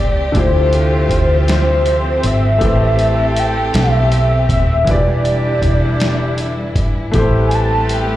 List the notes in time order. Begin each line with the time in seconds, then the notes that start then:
Already playing: C#2 G3 A3 C4 E4 G4 B4 C5 D5
0.32 D2 C3 D3 F3 A3 C4 E4 F4 E5, kick, closed hi-hat
0.36 F4 G4 C5
0.73 closed hi-hat
1.09 D2, kick, closed hi-hat
1.48 C5, snare, closed hi-hat
1.86 closed hi-hat
2.23 G#1 E5, closed hi-hat
2.58 A1 E3 A3 C4 E4 G4 A4, kick, closed hi-hat
2.63 B4 C5
2.99 closed hi-hat
3.37 G5, closed hi-hat
3.74 B1 E5, snare, closed hi-hat
4.12 closed hi-hat
4.49 D#1 E5, kick, closed hi-hat
4.84 E1 D3 E3 G3 D4 E4 F4 G4, kick, closed hi-hat
4.89 B4 D5
4.94 G4
5.25 closed hi-hat
5.62 E1, kick, closed hi-hat
6.00 snare, closed hi-hat
6.38 closed hi-hat
6.76 G#1, kick, closed hi-hat
7.12 A1 G3 A3 B3 C4 E4 G4 B4, kick, closed hi-hat
7.16 A4 C5
7.47 G#5, closed hi-hat
7.55 A5
7.89 closed hi-hat
7.93 G5